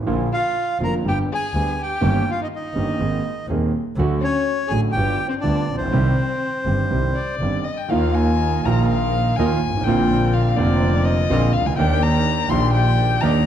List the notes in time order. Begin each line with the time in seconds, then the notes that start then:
0.02 A1
0.06 A#1 A#2 D3 F3 A#3 F4
0.32 F4 F5
0.80 F1 F2 D3 F3 A#3 F4 A#4
0.84 A#5
1.04 G1 G2 D3 G3 B3 G4
1.08 G4 G5
1.32 G#4 G#5
1.53 D2 D3 G3 B3 G4
1.81 G4 G5
2.01 G1 G2 D#3 A#3 C#4 G4
2.30 F4 F5
2.42 D#4 D#5
2.54 D#4 D#5
2.74 G1 G2 D#3 A#3 C#4 G4
2.98 G#1 G#2 D#3 A#3 C4 G#4
3.48 D#1 D#2 D#3 A#3 C4 G#4
3.96 D2 D3 F#3 A3 F#4
4.20 C#4 C#5
4.68 A1 A2 D3 F#3 A3 F#4 G#4 G#5
4.91 G1 G4 G5
4.96 G1 G2 D3 G3 B3 F4
5.28 C4 C5
5.38 D4 D5
5.43 D2 D3 G3 B3 F4
5.68 A#1
5.75 A1 C4 C5
5.80 A#1
5.85 B1
5.92 C2 C3 D#3 G3 C4 G4
6.66 G1 G2 D#3 G3 C4 G4
6.90 C2 C3 D#3 G3 C4 G4
7.15 D5
7.39 G1 G2 D#3 G3 C4 G4
7.64 D#5
7.77 G5
7.89 D#2 D#3 F3 A#3 D#4 F4 A#4 F5
8.14 G#5
8.63 A#1 A#2 D#3 F3 A#3 D#4 F4 A#4 A#5
8.67 F4
8.88 F5
9.36 D#2 D#3 F3 A#3 D#4 F4 A#4 G#5
9.62 G#1
9.69 G1
9.77 G#1
9.81 A1 A#1 G5
9.85 A#1 A#2 D3 A#3 C4 D4 F4 A#4
10.33 F5
10.56 F1 F2 D3 A#3 C4 D4 F4 A#4 D5
11.04 D#5
11.29 A#1 A#2 D3 A#3 C4 D4 F4 A#4
11.53 C#2 F5
11.61 C2
11.66 C#2 G#5
11.73 D2 D#3
11.77 D#2 D#3 A#3 D4 G4 G5
12.02 A#5
12.48 A#1 A#2 D#3 A#3 D4 G4 C6
12.73 G5
13.21 D#2 D#3 A#3 D4 D#4 G4 A#5